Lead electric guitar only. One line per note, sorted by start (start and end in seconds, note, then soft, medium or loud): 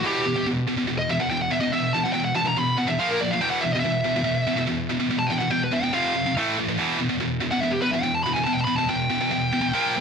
0.07 0.45 G4 medium
0.99 1.09 D#5 medium
1.11 1.21 E5 medium
1.20 1.30 F#5 medium
1.30 1.41 G5 loud
1.42 1.52 F#5 medium
1.51 1.60 E5 loud
1.61 1.72 D#5 medium
1.72 1.93 E5 medium
1.93 2.04 A5 loud
2.04 2.12 F#5 medium
2.13 2.24 G5 medium
2.25 2.36 F#5 medium
2.36 2.47 A5 loud
2.47 2.58 A#5 medium
2.58 2.78 B5 loud
2.78 2.89 F#5 medium
2.88 2.99 E5 medium
2.99 3.10 F5 loud
3.08 3.20 A#4 medium
3.21 3.31 D5 loud
3.31 3.41 F5 medium
3.41 3.50 G5 loud
3.50 3.61 F#5 medium
3.61 3.72 E5 loud
3.73 3.79 D#5 medium
3.80 4.62 E5 medium
5.19 5.30 A5 medium
5.27 5.38 G5 loud
5.39 5.51 F#5 medium
5.51 5.62 G5 medium
5.64 5.74 B4 medium
5.73 5.83 E5 loud
5.83 5.93 G5 loud
5.94 6.33 F5 medium
7.51 7.60 F#5 medium
7.60 7.72 E5 medium
7.71 7.81 G4 medium
7.82 7.93 B4 medium
7.91 8.02 E5 medium
8.02 8.14 G5 medium
8.15 8.23 A5 loud
8.24 8.34 B5 loud
8.34 8.44 G#5 loud
8.44 8.52 A5 loud
8.53 8.60 G5 loud
8.61 8.64 A5 loud
8.65 8.76 B5 loud
8.77 8.88 A5 medium
8.88 10.01 G5 medium